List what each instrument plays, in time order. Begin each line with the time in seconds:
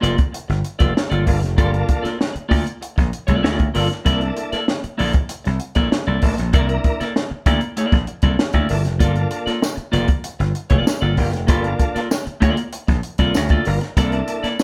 0.01 slap bass F1, clean electric guitar A#3 F4 A4 D5, closed hi-hat
0.17 muted clean electric guitar stroke, kick, closed hi-hat
0.32 muted clean electric guitar stroke, closed hi-hat
0.48 slap bass G1, muted clean electric guitar stroke, snare, closed hi-hat
0.64 closed hi-hat
0.79 slap bass F1, clean electric guitar A#3 F4 A4 D5, kick, closed hi-hat
0.94 muted clean electric guitar stroke, snare
1.10 slap bass G1, clean electric guitar A#3 F4 A4 D5, closed hi-hat
1.26 slap bass G1, tonewheel organ A#3 D4 F4 A4, muted clean electric guitar stroke, kick, open hi-hat
1.40 slap bass F1, muted clean electric guitar stroke, snare, closed hi-hat
1.57 slap bass G1, tonewheel organ A3 D4 F4 A4, clean electric guitar A#3 F4 A4 D5, kick, closed hi-hat
1.65 tonewheel organ A#3
1.72 muted clean electric guitar stroke, closed hi-hat
1.87 muted clean electric guitar stroke, kick, closed hi-hat
2.02 clean electric guitar A#3 F4 A4 D5, muted slap bass stroke, snare, closed hi-hat
2.18 muted clean electric guitar stroke, snare
2.34 muted clean electric guitar stroke, muted slap bass stroke, closed hi-hat
2.49 slap bass D2, clean electric guitar A#3 F4 A4 D5, kick, open hi-hat
2.66 muted clean electric guitar stroke, closed hi-hat
2.81 muted clean electric guitar stroke, closed hi-hat
2.96 slap bass A#1, muted clean electric guitar stroke, kick, snare, closed hi-hat
3.13 closed hi-hat
3.27 slap bass C2, clean electric guitar A#3 F4 A4 D5, kick, closed hi-hat
3.42 slap bass D2, clean electric guitar A#3 F4 A4 D5, snare
3.59 muted clean electric guitar stroke, kick, closed hi-hat
3.74 slap bass G1, clean electric guitar A#3 F4 A4 D5, tonewheel organ A#3 D4 F4 A4, open hi-hat
3.90 muted clean electric guitar stroke, snare, closed hi-hat
4.05 slap bass C2, clean electric guitar A#3 E4 A4 D5, tonewheel organ A#3 D4 E4 G#4, kick, closed hi-hat
4.13 tonewheel organ A4
4.21 muted clean electric guitar stroke, closed hi-hat
4.37 muted clean electric guitar stroke, closed hi-hat
4.52 clean electric guitar A#3 E4 A4 D5, muted slap bass stroke, snare, closed hi-hat
4.68 muted clean electric guitar stroke, snare
4.84 muted clean electric guitar stroke, muted slap bass stroke, closed hi-hat
4.98 slap bass A#1, clean electric guitar A#3 E4 A4 D5, open hi-hat
5.13 muted clean electric guitar stroke, kick, closed hi-hat
5.29 muted clean electric guitar stroke, closed hi-hat
5.44 slap bass C2, muted clean electric guitar stroke, snare, closed hi-hat
5.60 closed hi-hat
5.75 slap bass A#1, clean electric guitar A#3 E4 A4 D5, kick, closed hi-hat
5.91 muted clean electric guitar stroke, snare
6.07 slap bass C2, clean electric guitar A#3 E4 A4 D5
6.22 slap bass A1, tonewheel organ A#3 D4 E4 A4, muted clean electric guitar stroke, kick, open hi-hat
6.37 slap bass A#1, muted clean electric guitar stroke, snare, closed hi-hat
6.53 slap bass C2, clean electric guitar A#3 E4 A4 D5, tonewheel organ A#3 D4 E4 A#4, kick, closed hi-hat
6.68 muted clean electric guitar stroke, closed hi-hat
6.84 muted clean electric guitar stroke, kick, closed hi-hat
7.00 clean electric guitar A#3 E4 A4 D5, muted slap bass stroke, snare, closed hi-hat
7.16 muted clean electric guitar stroke, snare
7.30 muted clean electric guitar stroke, muted slap bass stroke
7.46 slap bass D2, clean electric guitar A#3 E4 A4 D5, kick, closed hi-hat
7.61 muted clean electric guitar stroke, closed hi-hat
7.77 clean electric guitar A#3 E4 A4 D5, closed hi-hat
7.92 slap bass A#1, kick, snare, closed hi-hat
8.07 muted clean electric guitar stroke, closed hi-hat
8.22 slap bass C2, clean electric guitar A#3 E4 A4 D5, kick, closed hi-hat
8.39 muted clean electric guitar stroke, snare
8.53 slap bass D2, clean electric guitar A#3 E4 A4 D5, kick, closed hi-hat
8.69 slap bass G1, tonewheel organ A#3 D4 E4 A4, muted clean electric guitar stroke, open hi-hat
8.85 slap bass F1, muted clean electric guitar stroke, snare, closed hi-hat
8.99 slap bass G1, clean electric guitar A#3 F4 A4 D5, tonewheel organ A#3 D4 F4 A4, kick, closed hi-hat
9.16 muted clean electric guitar stroke, closed hi-hat
9.31 muted clean electric guitar stroke, closed hi-hat
9.46 clean electric guitar A#3 F4 A4 D5, muted slap bass stroke, snare, closed hi-hat
9.61 muted clean electric guitar stroke, snare, tambourine
9.76 muted clean electric guitar stroke, muted slap bass stroke, closed hi-hat
9.92 slap bass F1, clean electric guitar A#3 F4 A4 D5, closed hi-hat
10.08 muted clean electric guitar stroke, kick, closed hi-hat
10.24 muted clean electric guitar stroke, closed hi-hat
10.39 slap bass G1, muted clean electric guitar stroke, snare, closed hi-hat
10.55 closed hi-hat
10.70 slap bass F1, clean electric guitar A#3 F4 A4 D5, kick, closed hi-hat
10.86 muted clean electric guitar stroke, snare, tambourine
11.01 slap bass G1, clean electric guitar A#3 F4 A4 D5
11.17 slap bass G1, tonewheel organ A#3 D4 F4 G4, muted clean electric guitar stroke, kick, open hi-hat
11.32 slap bass F1, muted clean electric guitar stroke, snare, closed hi-hat
11.47 slap bass G1, clean electric guitar A#3 F4 A4 D5, tonewheel organ A#3 D4 F4 A4, kick, closed hi-hat
11.64 muted clean electric guitar stroke, closed hi-hat
11.79 muted clean electric guitar stroke, kick, closed hi-hat
11.95 clean electric guitar A#3 F4 A4 D5, muted slap bass stroke, snare, closed hi-hat
12.10 muted clean electric guitar stroke, snare, tambourine
12.26 muted clean electric guitar stroke, muted slap bass stroke, closed hi-hat
12.40 slap bass D2, clean electric guitar A#3 F4 A4 D5, kick, closed hi-hat
12.57 muted clean electric guitar stroke, closed hi-hat
12.73 muted clean electric guitar stroke, closed hi-hat
12.87 slap bass A#1, muted clean electric guitar stroke, kick, snare, closed hi-hat
13.03 closed hi-hat
13.18 slap bass C2, clean electric guitar A#3 F4 A4 D5, kick, closed hi-hat
13.34 slap bass D2, muted clean electric guitar stroke, snare, tambourine
13.49 clean electric guitar A#3 F4 A4 D5, kick, closed hi-hat
13.65 slap bass G1, tonewheel organ A#3 D4 F4 A#4, muted clean electric guitar stroke, open hi-hat
13.81 muted clean electric guitar stroke, snare, closed hi-hat
13.97 slap bass C2, clean electric guitar A#3 E4 A4 D5, tonewheel organ A#3 D4 E4 A4, kick, closed hi-hat
14.12 muted clean electric guitar stroke, closed hi-hat
14.28 muted clean electric guitar stroke, closed hi-hat
14.43 clean electric guitar A#3 E4 A4 D5, muted slap bass stroke, snare, closed hi-hat
14.59 muted clean electric guitar stroke, snare, tambourine